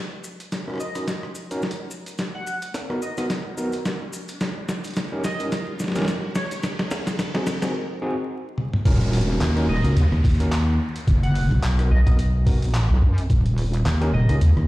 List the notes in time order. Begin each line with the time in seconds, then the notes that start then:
Already playing: riser
0.24 maracas
0.40 closed hi-hat, maracas
0.52 snare, closed hi-hat, maracas
0.68 C#4 D#4 F#4 A#4, cross-stick
0.70 cross-stick
0.74 cross-stick
0.76 cross-stick
0.78 D#5, cross-stick, maracas
0.95 C#4 D#4 F#4 A#4, cross-stick, closed hi-hat, maracas
1.08 snare, closed hi-hat, maracas
1.23 cross-stick
1.35 maracas
1.51 C#4 D#4 F#4 A#4, closed hi-hat, maracas
1.62 snare, maracas
1.71 closed hi-hat
1.91 maracas
2.06 closed hi-hat, maracas
2.18 snare, closed hi-hat, maracas
2.35 F#5
2.47 maracas
2.62 closed hi-hat, maracas
2.74 snare, closed hi-hat, maracas
2.90 B3 D#4 F#4 A#4, cross-stick
3.02 D#5, maracas
3.17 B3 D#4 F#4 A#4 D#5, cross-stick, closed hi-hat, maracas
3.30 snare, closed hi-hat, maracas
3.58 B3 D#4 F#4 A#4, maracas
3.72 closed hi-hat, maracas
3.85 cross-stick, snare, closed hi-hat, maracas
4.13 maracas
4.28 closed hi-hat, maracas
4.40 snare, closed hi-hat, maracas
4.69 snare, maracas
4.84 closed hi-hat, maracas
4.87 closed hi-hat
4.91 closed hi-hat
4.93 snare, closed hi-hat, maracas
4.97 closed hi-hat
5.00 closed hi-hat
5.04 closed hi-hat
5.08 C#4 D#4 G4 A#4, closed hi-hat
5.24 D#5, snare, maracas
5.40 C#4 D#4 G4 A#4, closed hi-hat, maracas
5.52 snare, closed hi-hat, maracas
5.79 snare, maracas
5.84 snare
5.88 snare
5.92 C#4 D#4 G4 A#4, snare, maracas
5.96 snare, closed hi-hat
5.99 snare
6.02 snare
6.05 snare, maracas
6.08 snare, closed hi-hat
6.35 C#5, snare, maracas
6.51 C#5, closed hi-hat, maracas
6.63 snare, closed hi-hat, maracas
6.79 snare
6.91 snare, maracas
7.07 snare, closed hi-hat, maracas
7.19 snare, closed hi-hat, maracas
7.34 C4 D#4 F#4 G#4, snare
7.47 snare, maracas
7.62 C4 D#4 F#4 G#4, snare, closed hi-hat, maracas
8.02 C4 D#4 F#4 G#4
8.58 high tom
8.73 mid tom
8.85 D#1 C#4 D#4 F#4 A#4, kick, closed hi-hat, crash, downlifter
9.01 closed hi-hat
9.13 open hi-hat
9.21 closed hi-hat
9.41 D#2, clap, closed hi-hat
9.57 C#4 D#4 F#4 A#4, cross-stick, closed hi-hat
9.69 D#1 D#5
9.77 cross-stick
9.84 C#2 C#4 D#4 F#4 A#4, closed hi-hat
9.96 D#2, closed hi-hat
10.12 D#2, cross-stick
10.24 D#2, kick, open hi-hat
10.40 C#4 D#4 F#4 A#4, closed hi-hat
10.52 clap, closed hi-hat
10.96 closed hi-hat
11.07 F#1, kick, closed hi-hat
11.23 F#5, closed hi-hat
11.35 open hi-hat
11.51 B1
11.63 B1, clap, closed hi-hat
11.79 B3 D#4 F#4 A#4, cross-stick, closed hi-hat
11.91 B1 D#5
12.06 B1 B3 D#4 F#4 A#4 D#5, kick, cross-stick, closed hi-hat
12.19 closed hi-hat
12.46 B3 D#4 F#4 A#4, kick, open hi-hat
12.62 A#1, closed hi-hat
12.64 closed hi-hat
12.69 closed hi-hat
12.71 closed hi-hat
12.72 cross-stick, clap, closed hi-hat
12.74 closed hi-hat
12.90 B1
13.02 F#2, kick
13.18 closed hi-hat
13.30 D#1, kick, closed hi-hat
13.46 closed hi-hat
13.58 open hi-hat
13.74 closed hi-hat
13.86 D#2, clap, closed hi-hat
14.01 C#4 D#4 G4 A#4, cross-stick, closed hi-hat
14.13 D#1 D#5
14.29 C#2 C#4 D#4 G4 A#4, cross-stick, closed hi-hat
14.41 D#2, closed hi-hat
14.57 D#2, cross-stick